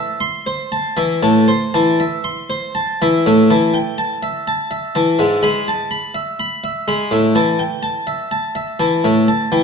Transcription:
0, 0, Header, 1, 2, 480
1, 0, Start_track
1, 0, Key_signature, 0, "minor"
1, 0, Tempo, 1013514
1, 1547, Time_signature, 4, 2, 24, 8
1, 1547, Tempo, 960000
1, 4731, End_track
2, 0, Start_track
2, 0, Title_t, "Harpsichord"
2, 0, Program_c, 0, 6
2, 0, Note_on_c, 0, 76, 61
2, 97, Note_on_c, 0, 84, 76
2, 107, Note_off_c, 0, 76, 0
2, 220, Note_on_c, 0, 72, 56
2, 230, Note_off_c, 0, 84, 0
2, 341, Note_on_c, 0, 81, 59
2, 351, Note_off_c, 0, 72, 0
2, 458, Note_on_c, 0, 76, 61
2, 460, Note_on_c, 0, 52, 53
2, 471, Note_off_c, 0, 81, 0
2, 581, Note_on_c, 0, 45, 62
2, 582, Note_on_c, 0, 81, 55
2, 590, Note_off_c, 0, 52, 0
2, 590, Note_off_c, 0, 76, 0
2, 701, Note_off_c, 0, 45, 0
2, 701, Note_on_c, 0, 72, 60
2, 711, Note_off_c, 0, 81, 0
2, 825, Note_on_c, 0, 81, 59
2, 826, Note_on_c, 0, 52, 54
2, 831, Note_off_c, 0, 72, 0
2, 947, Note_on_c, 0, 76, 56
2, 953, Note_off_c, 0, 81, 0
2, 954, Note_off_c, 0, 52, 0
2, 1062, Note_on_c, 0, 84, 53
2, 1074, Note_off_c, 0, 76, 0
2, 1183, Note_on_c, 0, 72, 51
2, 1192, Note_off_c, 0, 84, 0
2, 1302, Note_on_c, 0, 81, 59
2, 1313, Note_off_c, 0, 72, 0
2, 1429, Note_on_c, 0, 52, 53
2, 1429, Note_on_c, 0, 76, 60
2, 1431, Note_off_c, 0, 81, 0
2, 1541, Note_off_c, 0, 76, 0
2, 1546, Note_on_c, 0, 45, 53
2, 1546, Note_on_c, 0, 76, 47
2, 1547, Note_off_c, 0, 52, 0
2, 1665, Note_off_c, 0, 45, 0
2, 1666, Note_on_c, 0, 52, 34
2, 1666, Note_on_c, 0, 81, 50
2, 1675, Note_off_c, 0, 76, 0
2, 1783, Note_on_c, 0, 79, 41
2, 1796, Note_off_c, 0, 52, 0
2, 1796, Note_off_c, 0, 81, 0
2, 1905, Note_on_c, 0, 81, 45
2, 1909, Note_off_c, 0, 79, 0
2, 2027, Note_on_c, 0, 76, 43
2, 2036, Note_off_c, 0, 81, 0
2, 2151, Note_on_c, 0, 81, 46
2, 2158, Note_off_c, 0, 76, 0
2, 2268, Note_on_c, 0, 76, 40
2, 2280, Note_off_c, 0, 81, 0
2, 2390, Note_on_c, 0, 81, 47
2, 2393, Note_on_c, 0, 52, 41
2, 2399, Note_off_c, 0, 76, 0
2, 2507, Note_on_c, 0, 76, 46
2, 2510, Note_on_c, 0, 44, 54
2, 2514, Note_off_c, 0, 81, 0
2, 2515, Note_off_c, 0, 52, 0
2, 2628, Note_on_c, 0, 56, 39
2, 2628, Note_on_c, 0, 83, 59
2, 2630, Note_off_c, 0, 44, 0
2, 2639, Note_off_c, 0, 76, 0
2, 2754, Note_on_c, 0, 81, 41
2, 2758, Note_off_c, 0, 56, 0
2, 2758, Note_off_c, 0, 83, 0
2, 2868, Note_on_c, 0, 83, 44
2, 2875, Note_off_c, 0, 81, 0
2, 2986, Note_on_c, 0, 76, 41
2, 2998, Note_off_c, 0, 83, 0
2, 3112, Note_on_c, 0, 83, 44
2, 3117, Note_off_c, 0, 76, 0
2, 3232, Note_on_c, 0, 76, 46
2, 3239, Note_off_c, 0, 83, 0
2, 3353, Note_on_c, 0, 56, 43
2, 3353, Note_on_c, 0, 83, 50
2, 3359, Note_off_c, 0, 76, 0
2, 3470, Note_on_c, 0, 45, 50
2, 3472, Note_on_c, 0, 76, 52
2, 3473, Note_off_c, 0, 56, 0
2, 3473, Note_off_c, 0, 83, 0
2, 3587, Note_off_c, 0, 45, 0
2, 3590, Note_on_c, 0, 52, 37
2, 3592, Note_on_c, 0, 81, 57
2, 3598, Note_off_c, 0, 76, 0
2, 3710, Note_on_c, 0, 79, 39
2, 3716, Note_off_c, 0, 52, 0
2, 3717, Note_off_c, 0, 81, 0
2, 3827, Note_on_c, 0, 81, 47
2, 3830, Note_off_c, 0, 79, 0
2, 3949, Note_on_c, 0, 76, 45
2, 3954, Note_off_c, 0, 81, 0
2, 4071, Note_on_c, 0, 81, 47
2, 4075, Note_off_c, 0, 76, 0
2, 4190, Note_on_c, 0, 76, 51
2, 4196, Note_off_c, 0, 81, 0
2, 4311, Note_on_c, 0, 81, 48
2, 4312, Note_on_c, 0, 52, 41
2, 4316, Note_off_c, 0, 76, 0
2, 4436, Note_off_c, 0, 81, 0
2, 4436, Note_on_c, 0, 45, 44
2, 4437, Note_off_c, 0, 52, 0
2, 4437, Note_on_c, 0, 76, 50
2, 4549, Note_off_c, 0, 45, 0
2, 4555, Note_on_c, 0, 81, 54
2, 4559, Note_off_c, 0, 76, 0
2, 4673, Note_on_c, 0, 52, 47
2, 4674, Note_on_c, 0, 79, 42
2, 4677, Note_off_c, 0, 81, 0
2, 4731, Note_off_c, 0, 52, 0
2, 4731, Note_off_c, 0, 79, 0
2, 4731, End_track
0, 0, End_of_file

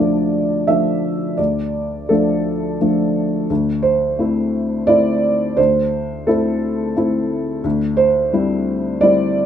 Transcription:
0, 0, Header, 1, 2, 480
1, 0, Start_track
1, 0, Key_signature, -1, "minor"
1, 0, Tempo, 706714
1, 939, Time_signature, 3, 2, 24, 8
1, 1902, Tempo, 689655
1, 6536, End_track
2, 0, Start_track
2, 0, Title_t, "Felt piano"
2, 0, Program_c, 0, 0
2, 0, Control_c, 0, 64, 127
2, 0, Note_on_c, 0, 38, 44
2, 0, Note_on_c, 0, 53, 36
2, 0, Note_on_c, 0, 57, 36
2, 0, Note_on_c, 0, 62, 37
2, 0, Note_on_c, 0, 74, 67
2, 437, Note_off_c, 0, 53, 0
2, 438, Note_off_c, 0, 57, 0
2, 438, Note_off_c, 0, 62, 0
2, 458, Note_on_c, 0, 76, 79
2, 459, Note_off_c, 0, 74, 0
2, 464, Note_on_c, 0, 53, 36
2, 469, Note_on_c, 0, 57, 34
2, 471, Note_on_c, 0, 62, 37
2, 914, Note_off_c, 0, 53, 0
2, 916, Note_off_c, 0, 57, 0
2, 917, Note_off_c, 0, 62, 0
2, 932, Note_on_c, 0, 74, 67
2, 938, Note_off_c, 0, 76, 0
2, 940, Note_off_c, 0, 38, 0
2, 940, Note_on_c, 0, 38, 39
2, 951, Control_c, 0, 64, 0
2, 1065, Control_c, 0, 64, 127
2, 1408, Note_off_c, 0, 38, 0
2, 1418, Note_off_c, 0, 74, 0
2, 1419, Note_on_c, 0, 69, 63
2, 1427, Note_on_c, 0, 53, 35
2, 1429, Note_on_c, 0, 57, 34
2, 1430, Note_on_c, 0, 62, 38
2, 1877, Note_off_c, 0, 53, 0
2, 1878, Note_off_c, 0, 57, 0
2, 1879, Note_off_c, 0, 62, 0
2, 1909, Note_on_c, 0, 53, 41
2, 1911, Note_on_c, 0, 57, 41
2, 1914, Note_on_c, 0, 62, 39
2, 2360, Note_off_c, 0, 53, 0
2, 2361, Note_off_c, 0, 57, 0
2, 2363, Note_off_c, 0, 62, 0
2, 2383, Note_off_c, 0, 69, 0
2, 2389, Note_on_c, 0, 38, 50
2, 2398, Control_c, 0, 64, 0
2, 2510, Control_c, 0, 64, 127
2, 2615, Note_on_c, 0, 72, 77
2, 2851, Note_off_c, 0, 38, 0
2, 2867, Note_on_c, 0, 57, 43
2, 2870, Note_on_c, 0, 60, 39
2, 2875, Note_on_c, 0, 64, 43
2, 3320, Note_off_c, 0, 57, 0
2, 3322, Note_off_c, 0, 60, 0
2, 3324, Note_off_c, 0, 64, 0
2, 3342, Note_off_c, 0, 72, 0
2, 3342, Note_on_c, 0, 74, 93
2, 3350, Note_on_c, 0, 57, 44
2, 3350, Note_on_c, 0, 60, 44
2, 3355, Note_on_c, 0, 64, 51
2, 3806, Note_off_c, 0, 57, 0
2, 3806, Note_off_c, 0, 60, 0
2, 3808, Note_off_c, 0, 64, 0
2, 3827, Note_on_c, 0, 72, 88
2, 3830, Note_off_c, 0, 74, 0
2, 3835, Note_on_c, 0, 38, 52
2, 3846, Control_c, 0, 64, 0
2, 3971, Control_c, 0, 64, 127
2, 4303, Note_off_c, 0, 38, 0
2, 4313, Note_off_c, 0, 72, 0
2, 4315, Note_on_c, 0, 69, 69
2, 4318, Note_on_c, 0, 57, 43
2, 4322, Note_on_c, 0, 60, 45
2, 4327, Note_on_c, 0, 64, 51
2, 4771, Note_off_c, 0, 57, 0
2, 4773, Note_off_c, 0, 60, 0
2, 4775, Note_off_c, 0, 64, 0
2, 4801, Note_on_c, 0, 57, 44
2, 4803, Note_on_c, 0, 60, 43
2, 4807, Note_on_c, 0, 64, 52
2, 5246, Note_off_c, 0, 57, 0
2, 5247, Note_off_c, 0, 60, 0
2, 5249, Note_off_c, 0, 64, 0
2, 5270, Note_on_c, 0, 38, 61
2, 5272, Note_off_c, 0, 69, 0
2, 5284, Control_c, 0, 64, 0
2, 5377, Control_c, 0, 64, 127
2, 5498, Note_on_c, 0, 72, 92
2, 5732, Note_off_c, 0, 38, 0
2, 5752, Note_on_c, 0, 55, 44
2, 5753, Note_on_c, 0, 60, 47
2, 5755, Note_on_c, 0, 64, 45
2, 6198, Note_off_c, 0, 55, 0
2, 6199, Note_off_c, 0, 60, 0
2, 6200, Note_off_c, 0, 64, 0
2, 6218, Note_off_c, 0, 72, 0
2, 6222, Note_on_c, 0, 74, 91
2, 6231, Note_on_c, 0, 60, 40
2, 6232, Note_on_c, 0, 55, 44
2, 6236, Note_on_c, 0, 64, 49
2, 6536, Note_off_c, 0, 55, 0
2, 6536, Note_off_c, 0, 60, 0
2, 6536, Note_off_c, 0, 64, 0
2, 6536, Note_off_c, 0, 74, 0
2, 6536, End_track
0, 0, End_of_file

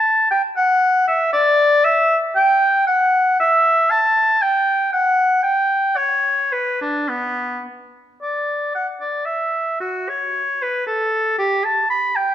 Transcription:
0, 0, Header, 1, 2, 480
1, 0, Start_track
1, 0, Tempo, 513699
1, 284, Time_signature, 3, 2, 24, 8
1, 5083, Tempo, 554529
1, 7483, Tempo, 535236
1, 9403, Tempo, 517688
1, 11251, End_track
2, 0, Start_track
2, 0, Title_t, "Oboe"
2, 0, Program_c, 0, 68
2, 0, Note_on_c, 0, 81, 93
2, 281, Note_off_c, 0, 81, 0
2, 286, Note_on_c, 0, 79, 89
2, 395, Note_off_c, 0, 79, 0
2, 528, Note_on_c, 0, 78, 102
2, 996, Note_off_c, 0, 78, 0
2, 1004, Note_on_c, 0, 76, 89
2, 1236, Note_off_c, 0, 76, 0
2, 1242, Note_on_c, 0, 74, 101
2, 1722, Note_on_c, 0, 76, 105
2, 1736, Note_off_c, 0, 74, 0
2, 2038, Note_off_c, 0, 76, 0
2, 2201, Note_on_c, 0, 79, 107
2, 2649, Note_off_c, 0, 79, 0
2, 2681, Note_on_c, 0, 78, 101
2, 3155, Note_off_c, 0, 78, 0
2, 3175, Note_on_c, 0, 76, 103
2, 3649, Note_on_c, 0, 81, 105
2, 3663, Note_off_c, 0, 76, 0
2, 4129, Note_on_c, 0, 79, 90
2, 4143, Note_off_c, 0, 81, 0
2, 4598, Note_off_c, 0, 79, 0
2, 4604, Note_on_c, 0, 78, 99
2, 5069, Note_off_c, 0, 78, 0
2, 5075, Note_on_c, 0, 79, 99
2, 5537, Note_on_c, 0, 73, 82
2, 5550, Note_off_c, 0, 79, 0
2, 6019, Note_on_c, 0, 71, 73
2, 6032, Note_off_c, 0, 73, 0
2, 6266, Note_off_c, 0, 71, 0
2, 6271, Note_on_c, 0, 62, 72
2, 6508, Note_on_c, 0, 59, 70
2, 6521, Note_off_c, 0, 62, 0
2, 6995, Note_off_c, 0, 59, 0
2, 7488, Note_on_c, 0, 74, 64
2, 7929, Note_off_c, 0, 74, 0
2, 7964, Note_on_c, 0, 78, 66
2, 8068, Note_off_c, 0, 78, 0
2, 8193, Note_on_c, 0, 74, 59
2, 8417, Note_on_c, 0, 76, 65
2, 8431, Note_off_c, 0, 74, 0
2, 8904, Note_off_c, 0, 76, 0
2, 8909, Note_on_c, 0, 66, 62
2, 9162, Note_on_c, 0, 73, 66
2, 9176, Note_off_c, 0, 66, 0
2, 9654, Note_on_c, 0, 71, 64
2, 9668, Note_off_c, 0, 73, 0
2, 9875, Note_off_c, 0, 71, 0
2, 9881, Note_on_c, 0, 69, 68
2, 10351, Note_off_c, 0, 69, 0
2, 10358, Note_on_c, 0, 67, 73
2, 10598, Note_on_c, 0, 81, 76
2, 10611, Note_off_c, 0, 67, 0
2, 10829, Note_off_c, 0, 81, 0
2, 10834, Note_on_c, 0, 83, 84
2, 11079, Note_on_c, 0, 79, 75
2, 11093, Note_off_c, 0, 83, 0
2, 11251, Note_off_c, 0, 79, 0
2, 11251, End_track
0, 0, End_of_file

